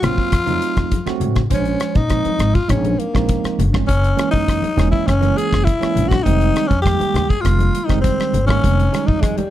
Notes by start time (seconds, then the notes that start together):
0.02 A#1 F#3 A#3 C4 F4 F#4, cross-stick, closed hi-hat, low conga
0.18 kick
0.32 F2, kick, cross-stick, closed hi-hat
0.46 F#3 A3 C4 D#4, closed hi-hat, high conga, low conga
0.62 closed hi-hat
0.77 F2, kick, cross-stick, closed hi-hat, high conga
0.92 kick, closed hi-hat, high conga
1.06 F#3 A3 C4 F#4, muted upright bass stroke, cross-stick, closed hi-hat, high conga
1.20 A2, closed hi-hat, low conga
1.36 kick, cross-stick, closed hi-hat, low conga
1.50 A#1 F3 G#3 C#4 C5, kick, closed hi-hat
1.65 closed hi-hat
1.80 cross-stick, closed hi-hat
1.95 A#2 D#4, kick, closed hi-hat
2.09 F3 G#3 C4 D#4, kick, cross-stick, closed hi-hat
2.25 muted upright bass stroke, closed hi-hat, high conga
2.39 G#1, cross-stick, closed hi-hat
2.55 F4, kick, closed hi-hat
2.68 A#1 F3 G#3 C4 C#4 D#4, kick, cross-stick, closed hi-hat
2.85 closed hi-hat, high conga
2.99 A#3, closed hi-hat
3.14 A#1 F3 G#3 C4 D#4, kick, cross-stick, closed hi-hat
3.29 kick, closed hi-hat
3.44 muted upright bass stroke, cross-stick, closed hi-hat
3.59 G1, closed hi-hat, high conga, low conga
3.73 F3 G#3 C4 C#4, kick, cross-stick, high conga
3.87 F#1 C#4, kick, closed hi-hat
4.04 closed hi-hat
4.16 E3 G#3 A#3 C#4, cross-stick, closed hi-hat
4.31 F#2 D#4, kick
4.48 kick, cross-stick, closed hi-hat
4.62 muted upright bass stroke, closed hi-hat, high conga
4.76 E1 E3 G#3 A#3 C#4, cross-stick, closed hi-hat, low conga
4.91 E4, kick
5.07 F#1 C#4, kick, cross-stick, closed hi-hat
5.20 E3 G#3 A#3 C#4, closed hi-hat, high conga
5.37 G#4, closed hi-hat
5.52 F#1, kick, cross-stick, closed hi-hat
5.64 E4, kick, closed hi-hat
5.80 E3 G#3 A#3 C#4, muted upright bass stroke, cross-stick, closed hi-hat
5.96 A#1, closed hi-hat, high conga, low conga
6.08 F#4, kick, closed hi-hat, high conga
6.12 cross-stick
6.23 F1 D#3 G3 G#3 C4 D#4, kick, closed hi-hat
6.41 closed hi-hat
6.56 cross-stick, closed hi-hat
6.67 F2 C#4, kick, closed hi-hat
6.82 D#3 G3 G#3 A#3 G4, kick
6.86 cross-stick, closed hi-hat
7.00 muted upright bass stroke, closed hi-hat, high conga
7.14 D#2, cross-stick, closed hi-hat, low conga
7.29 G#4, kick, closed hi-hat
7.41 D#3 G3 G#3 A#3 F4
7.45 F1, kick, cross-stick, closed hi-hat
7.59 closed hi-hat, high conga
7.75 closed hi-hat
7.86 D#3 G3 G#3 C4 D#4, kick, closed hi-hat
7.90 F1, cross-stick
8.01 C4, kick, closed hi-hat
8.18 muted upright bass stroke, cross-stick, closed hi-hat
8.33 G#1, closed hi-hat, high conga, low conga
8.47 D#3 G3 G#3 A#3 C#4, kick, cross-stick, high conga
8.64 F1, kick, closed hi-hat
8.80 closed hi-hat
8.92 D#3 G3 G#3 D#4, cross-stick, closed hi-hat
9.07 F2 D#4, kick
9.21 G#3, kick, cross-stick, closed hi-hat
9.37 G3, muted upright bass stroke, closed hi-hat, high conga